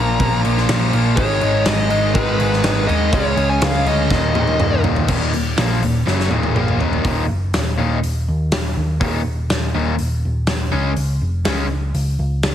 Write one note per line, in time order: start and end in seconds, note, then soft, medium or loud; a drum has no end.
0.00 0.19 A#1 medium
0.00 0.19 A#2 medium
0.00 0.20 F3 medium
0.00 0.20 A#3 medium
0.00 0.40 A#5 medium
0.20 0.43 A#1 medium
0.20 0.42 A#2 medium
0.20 0.43 F3 medium
0.20 0.43 A#3 medium
0.20 kick loud
0.20 crash medium
0.44 0.68 A#1 medium
0.44 0.69 A#2 medium
0.44 0.69 F3 loud
0.44 0.69 A#3 loud
0.44 crash medium
0.57 snare soft
0.69 0.92 A#1 medium
0.69 0.93 A#2 medium
0.69 0.93 F3 loud
0.69 0.94 A#3 loud
0.69 snare loud
0.69 crash medium
0.93 1.17 A#1 medium
0.93 1.17 A#2 medium
0.93 1.17 F3 loud
0.93 1.17 A#3 loud
0.93 crash medium
1.16 1.41 G#1 loud
1.16 1.41 G#2 medium
1.16 1.42 D#3 loud
1.16 1.41 G#3 loud
1.16 1.67 C#5 medium
1.16 kick loud
1.16 crash medium
1.41 1.65 G#1 medium
1.41 1.65 G#2 medium
1.41 1.65 D#3 medium
1.41 1.66 G#3 medium
1.41 crash medium
1.65 2.13 G#1 medium
1.65 1.89 G#2 loud
1.65 1.89 D#3 loud
1.65 1.90 G#3 loud
1.65 2.17 D#5 medium
1.65 snare loud
1.65 crash medium
1.90 2.12 G#2 medium
1.90 2.13 D#3 medium
1.90 2.13 G#3 medium
1.90 crash medium
2.14 2.38 G#1 medium
2.14 2.37 G#2 medium
2.14 2.37 D#3 loud
2.14 2.38 G#3 loud
2.14 2.90 B4 medium
2.14 kick loud
2.14 crash medium
2.39 2.63 G#1 loud
2.39 2.62 G#2 loud
2.39 2.63 D#3 medium
2.39 2.63 G#3 loud
2.39 crash medium
2.53 snare soft
2.63 2.87 G#1 medium
2.63 2.86 G#2 medium
2.63 2.87 D#3 loud
2.63 2.87 G#3 loud
2.63 snare loud
2.63 crash medium
2.87 3.13 D#2 loud
2.87 3.11 G#2 medium
2.87 3.11 D#3 loud
2.87 3.11 G#3 medium
2.87 3.13 D#5 medium
2.87 crash medium
3.12 3.36 C#2 medium
3.12 3.36 C#3 medium
3.12 3.36 G#3 loud
3.12 3.36 C#4 medium
3.12 3.51 C#5 medium
3.12 kick loud
3.12 crash medium
3.37 3.60 C#2 loud
3.37 3.62 C#3 medium
3.37 3.62 G#3 medium
3.37 3.62 C#4 medium
3.37 crash medium
3.50 3.64 G#5 loud
3.61 3.85 C#2 medium
3.61 3.85 C#3 loud
3.61 3.85 G#3 loud
3.61 3.86 C#4 loud
3.61 3.88 F5 medium
3.61 snare loud
3.61 crash medium
3.86 4.09 D2 medium
3.86 4.09 C#3 medium
3.86 4.09 G#3 medium
3.86 4.10 C#4 loud
3.86 4.81 D#5 medium
3.86 crash medium
4.10 4.34 D#1 medium
4.10 4.35 D#2 medium
4.10 4.35 A#2 medium
4.10 4.35 D#3 loud
4.10 kick loud
4.10 snare medium
4.35 4.58 D#1 medium
4.35 4.58 D#2 medium
4.35 4.59 A#2 medium
4.35 4.59 D#3 loud
4.35 high tom medium
4.47 high tom medium
4.59 4.83 D#1 loud
4.59 4.82 D#2 medium
4.59 4.83 A#2 loud
4.59 4.83 D#3 loud
4.59 mid tom medium
4.84 5.07 D#1 medium
4.84 5.06 D#2 medium
4.84 5.07 A#2 loud
4.84 5.07 D#3 medium
4.84 floor tom loud
4.96 floor tom loud
5.07 5.31 D#1 medium
5.07 5.32 D#2 medium
5.07 5.32 A#2 medium
5.07 5.32 D#3 loud
5.07 kick loud
5.07 crash loud
5.33 5.56 D#1 medium
5.33 5.52 D#2 medium
5.33 5.53 A#2 medium
5.33 open hi-hat medium
5.57 5.80 A#1 medium
5.57 5.81 A#2 medium
5.57 5.82 F3 medium
5.57 5.82 A#3 loud
5.57 snare loud
5.57 open hi-hat medium
5.82 6.05 D#1 medium
5.82 6.02 D#2 medium
5.82 6.02 A#2 medium
5.82 open hi-hat medium
6.07 6.29 F#1 medium
6.07 6.29 F#2 medium
6.07 6.30 C#3 medium
6.07 6.30 F#3 loud
6.07 snare medium
6.20 snare medium
6.30 6.53 D#1 loud
6.30 6.54 D#2 medium
6.30 6.54 A#2 loud
6.30 6.55 D#3 loud
6.30 high tom medium
6.43 high tom medium
6.55 6.78 A#1 medium
6.55 6.79 A#2 medium
6.55 6.79 F3 medium
6.55 6.79 A#3 medium
6.55 mid tom medium
6.68 mid tom medium
6.80 7.03 D#1 loud
6.80 7.03 D#2 medium
6.80 7.04 A#2 medium
6.80 7.03 D#3 loud
6.80 floor tom medium
6.93 floor tom medium
7.04 7.28 D#1 medium
7.04 7.24 D#2 medium
7.04 7.24 A#2 loud
7.04 7.24 D#3 loud
7.04 kick loud
7.04 open hi-hat medium
7.30 7.53 F#1 medium
7.54 8.01 D#1 medium
7.54 snare loud
7.54 open hi-hat medium
7.78 7.97 D#2 medium
7.78 7.97 A#2 medium
7.78 7.98 D#3 loud
8.03 8.26 D#1 medium
8.03 open hi-hat medium
8.28 8.51 D#2 medium
8.52 8.75 D#1 medium
8.52 snare loud
8.52 open hi-hat medium
8.77 9.00 D#2 medium
9.01 9.24 D#1 medium
9.01 9.20 D#2 medium
9.01 9.21 A#2 medium
9.01 9.21 D#3 medium
9.01 kick loud
9.01 open hi-hat medium
9.25 9.48 D#1 medium
9.49 9.73 D#1 medium
9.49 snare loud
9.49 open hi-hat medium
9.75 9.98 D#1 medium
9.75 9.94 D#2 medium
9.75 9.94 A#2 loud
9.75 9.95 D#3 medium
9.98 10.22 D#1 medium
9.98 open hi-hat medium
10.25 10.47 D#1 medium
10.47 10.71 D#1 medium
10.47 snare loud
10.47 open hi-hat medium
10.72 10.95 C#2 medium
10.72 10.92 C#3 loud
10.72 10.92 G#3 loud
10.72 10.92 C#4 loud
10.96 11.20 C#2 medium
10.96 open hi-hat soft
11.21 11.45 F1 medium
11.45 11.92 C#2 medium
11.45 11.66 C#3 loud
11.45 11.66 G#3 loud
11.45 11.66 C#4 loud
11.45 snare loud
11.45 open hi-hat medium
11.94 12.18 C#2 medium
11.94 open hi-hat medium
12.19 12.42 C#2 medium
12.43 snare loud
12.43 open hi-hat medium